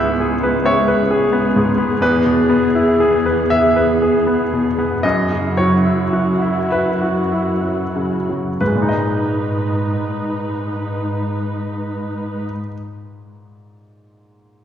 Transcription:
Already playing: C#2 G#2 B3 G#4 E5 F#5
0.00 E4
0.20 G#4
0.43 B4
0.65 C#5 E5
0.88 B4
1.11 G#4
1.32 B3
1.56 G#2
1.78 B3
2.00 E2 B3 B4
2.25 B2
2.49 B3
2.75 E4
3.00 G#4
3.26 B4
3.50 E5
3.76 B4
4.02 G#4
4.27 B3
4.53 B2
4.78 B3
5.03 F#2 E4 F#4 D#5
5.31 C#3
5.57 F#3 C#5
5.85 E4
6.13 F#4
6.41 E4
6.70 B4 E5
7.02 F#4
7.32 E4
7.63 F#3
7.96 C#3
8.29 F#3
8.60 G#2 D#4 B4
8.67 G#3
8.75 A#2
8.82 D#4
8.89 D#5

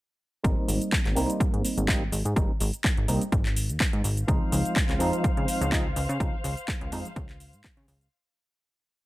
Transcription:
0.43 G#1 G3 A#3 C4 D#4, kick, closed hi-hat, shaker
0.68 G#1, open hi-hat, shaker
0.82 closed hi-hat, shaker
0.92 kick, clap, closed hi-hat, shaker
1.05 G#1, clap, closed hi-hat
1.16 C2 G3 A#3 C4 D#4, open hi-hat, shaker
1.30 closed hi-hat, shaker
1.40 G#2, kick, closed hi-hat, shaker
1.53 G#2, closed hi-hat
1.65 open hi-hat, shaker
1.77 G#1, closed hi-hat, shaker
1.88 G3 A#3 C4 D#4, kick, clap, closed hi-hat, shaker
2.12 G#1, open hi-hat, shaker
2.25 G#2, closed hi-hat, shaker
2.36 G#1 G3 A#3 C4 D#4, kick, closed hi-hat, shaker
2.60 G#1, open hi-hat, shaker
2.73 closed hi-hat, shaker
2.84 kick, clap, closed hi-hat, shaker
2.97 G#1, closed hi-hat
3.08 C2 G3 A#3 C4 D#4, open hi-hat, shaker
3.21 closed hi-hat, shaker
3.32 G#1, kick, closed hi-hat, shaker
3.46 clap, closed hi-hat
3.56 open hi-hat, shaker
3.69 D#2, closed hi-hat, shaker
3.80 kick, clap, closed hi-hat, shaker
3.93 G#2, closed hi-hat
4.04 G#1, open hi-hat, shaker
4.17 closed hi-hat, shaker
4.27 C#2 F3 G#3 C4 D#4 C5 F5, kick, closed hi-hat, shaker
4.41 tambourine
4.52 C#2, open hi-hat, tambourine, shaker
4.65 closed hi-hat, tambourine, shaker
4.76 kick, clap, closed hi-hat, shaker
4.89 C#2, clap, closed hi-hat
4.99 F2 F3 G#3 C4 D#4, open hi-hat, tambourine, shaker
5.13 closed hi-hat, shaker
5.24 C#3, kick, closed hi-hat, shaker
5.37 C#3, closed hi-hat
5.48 open hi-hat, tambourine, shaker
5.61 C#2, closed hi-hat, shaker
5.72 F3 G#3 C4 D#4, kick, clap, closed hi-hat, shaker
5.96 C#2, open hi-hat, tambourine, shaker
6.09 C#3, closed hi-hat, shaker
6.20 C#2 F3 G#3 C4 D#4, kick, closed hi-hat, shaker
6.34 tambourine
6.44 C#2, open hi-hat, tambourine, shaker
6.57 closed hi-hat, tambourine, shaker
6.68 kick, clap, closed hi-hat, shaker
6.81 C#2, closed hi-hat, tambourine
6.92 F2 F3 G#3 C4 D#4, open hi-hat, tambourine, shaker
7.05 closed hi-hat, tambourine, shaker
7.16 C#2, kick, closed hi-hat, tambourine, shaker
7.29 clap, closed hi-hat
7.40 open hi-hat, tambourine, shaker
7.53 G#2, closed hi-hat, tambourine, shaker
7.64 kick, clap, closed hi-hat, shaker
7.77 C#3, closed hi-hat, tambourine
7.88 C#2, open hi-hat, tambourine, shaker
8.01 closed hi-hat, shaker

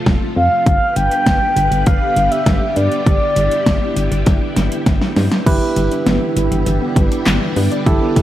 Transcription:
Already playing: C3 F3 A3 F4 A4
0.06 F1, kick, snare
0.36 F2 F5
0.66 G1 D3 G3 B3 G4 B4 F5, kick, closed hi-hat
0.96 G1 G5, closed hi-hat
1.11 closed hi-hat
1.26 G1, kick, snare, closed hi-hat
1.56 G1, closed hi-hat
1.71 G1, closed hi-hat
1.86 G1 F5, kick, closed hi-hat
2.16 G1, closed hi-hat
2.31 E5, closed hi-hat
2.46 G1, kick, snare, closed hi-hat
2.76 G2 D5, closed hi-hat
2.92 closed hi-hat
3.06 G1 E4, kick, closed hi-hat
3.36 G1, closed hi-hat
3.51 closed hi-hat
3.66 G1, kick, snare, closed hi-hat
3.96 G1, closed hi-hat
4.12 G1, closed hi-hat
4.26 G1, kick, snare, closed hi-hat
4.56 G1, snare, closed hi-hat
4.72 closed hi-hat
4.86 G1, kick, snare, closed hi-hat
5.02 snare
5.16 G2, snare, open hi-hat
5.32 snare, closed hi-hat
5.46 G1 D3 E3 G3 B3 E4 G4 B4, kick, closed hi-hat, crash
5.62 B3
5.76 G1 G3, closed hi-hat
5.91 D4, closed hi-hat
6.06 G1 B3, snare, closed hi-hat
6.22 E3
6.36 G1 G3, closed hi-hat
6.51 G1 E3, closed hi-hat
6.66 G1 E3, closed hi-hat
6.81 B3
6.96 G1 G3, kick, closed hi-hat
7.11 D4, closed hi-hat
7.26 G1 B3, snare, clap, closed hi-hat
7.41 E3
7.56 G2 B4, open hi-hat
7.71 D5, closed hi-hat
7.86 G1 E3 E4 G4 A4, kick, closed hi-hat
8.02 B3
8.16 G1 G3, kick, closed hi-hat

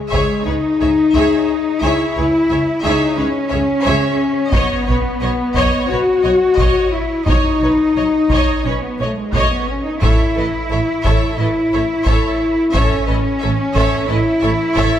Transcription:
Already playing: G#3
0.10 C#2 G#4 C#5 E5, taiko
0.45 C#2 D#4 G#4 B4 C#5
0.80 C#2 G#4 C#5 E5
1.14 C#2 G#4 C#5 E5
1.81 C#2 E4 G#4 C#5 E5
2.15 C#2 G#4 B4 C#5
2.50 C#2 G#4 C#5 E5
2.82 C#2 D#4 G#4 C#5 E5
3.16 C#2 C#4 G#4 B4 C#5
3.50 C#2 G#4 C#5 E5
3.83 C#2 C#5 E5
3.87 G#4
4.53 B1 B3 C#5 D#5, taiko
4.88 B1 B4 C#5
5.21 B1 C#5 D#5
5.55 B1 C#5 D#5, taiko
5.88 B1 F#4 B4 C#5
6.24 B1 C#5 D#5
6.57 B1 C#5 D#5, taiko
6.91 E4
7.25 B1 D#4 C#5 D#5, taiko
7.61 B1 B4 C#5
7.95 B1 C#5 D#5
8.29 B1 C#5 D#5, taiko
8.33 C#5
8.64 B1 C#4 B4 C#5
8.82 B3
8.98 B1 A3 C#5 D#5
9.16 G#3
9.33 B1 A3 C#5 D#5, taiko
9.50 B3
9.68 C#4
9.85 D#4
10.01 A1 E4 A4 C#5 E5, taiko
10.35 A1 A4 B4 D#5
10.70 A1 A4 C#5 E5
11.05 A1 A4 C#5 E5, taiko
11.37 A1 E4 A4 B4 D#5
11.73 A1 A4 C#5 E5
12.05 A1 A4 C#5 E5, taiko
12.73 A1 C#4 A4 C#5 E5, taiko
13.07 A1 A4 B4 D#5
13.40 A1 A4 C#5 E5
13.75 A1 A4 C#5 E5, taiko
14.09 A1 E4 A4 B4 D#5
14.42 A1 A4 C#5 E5
14.75 A1 A4 C#5 E5, taiko

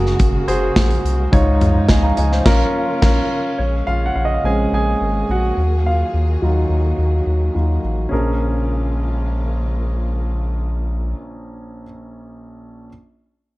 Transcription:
Already playing: F#1 C#3 G#3 A#3 F#4 G#4 A#4
0.06 snare
0.19 F#1, kick, closed hi-hat
0.47 F#1 F#4 G#4 C5, closed hi-hat
0.76 A#1, kick, snare, closed hi-hat
0.91 closed hi-hat
1.05 C2, closed hi-hat
1.32 C#2 G#2 C#3 F3 D#4 F4 C#5, kick, closed hi-hat
1.61 closed hi-hat, floor tom
1.89 C#2 D#5 G#5, kick, snare, closed hi-hat
2.03 F5 A#5
2.17 C#2 D#5 G#5, closed hi-hat
2.31 C5 F5, snare
2.45 A#1 A#3 C#4 F4 A#4, kick, snare, crash
3.02 A#1 C#4 F4 A#4, kick, snare, crash
3.58 A#1 C#3 G#3 A#3 C#4 G#4 C#5
3.87 A#1 F4 F5
4.06 F#5
4.16 A#1 F5
4.25 D#5
4.34 F5
4.44 A#1 G#3 C4 C#4 G#4 G#5
4.72 A#1 G#4 G#5
5.01 G#1
5.29 A#1 F#4 F#5
5.57 D#2 D#3 F#3
5.86 F4 F5
6.14 D#2
6.42 D#2 F#3 D#4 F4
6.70 D#2
6.98 D#2
7.27 D#2
7.55 D#2 F#3 D#4 F4
7.84 A1
8.09 A#1 C#4 G#4
8.13 C#3 G#3 A#3 F4 A#4

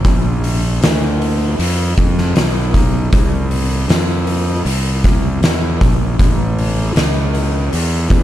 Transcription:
0.05 A#1, kick, open hi-hat
0.44 open hi-hat
0.82 D2, snare, open hi-hat
1.22 open hi-hat
1.59 F2, open hi-hat
1.98 F2, kick, open hi-hat
2.18 snare
2.35 B1, snare, open hi-hat
2.74 kick, open hi-hat
3.12 C2, kick, open hi-hat
3.51 open hi-hat
3.88 F2, snare, open hi-hat
4.27 open hi-hat
4.65 C2, open hi-hat
5.04 kick, snare, open hi-hat
5.41 E2, snare, open hi-hat
5.81 A#1, kick, open hi-hat
6.19 A1, kick, open hi-hat
6.59 open hi-hat
6.95 C#2, snare, open hi-hat
7.35 open hi-hat
7.73 E2, open hi-hat
8.10 E2, kick, open hi-hat

